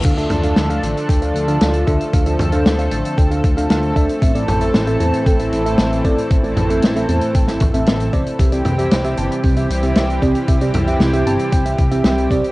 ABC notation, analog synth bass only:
X:1
M:4/4
L:1/8
Q:1/4=115
K:Dm
V:1 name="Analog synth bass" clef=bass
D,, D,, D,, A,,, D,, D,, D,, D,, | D,, D,, D,, A,,, D,, D,, D,, D,, | A,,, A,,, A,,, E,, A,,, A,,, A,,, A,,, | A,,, A,,, A,,, E,, A,,, A,,, A,,, A,,, |
C,, C,, C,, G,,, C,, C,, C,, C,, | C,, C,, C,, G,,, C,, C,, C,, C,, |]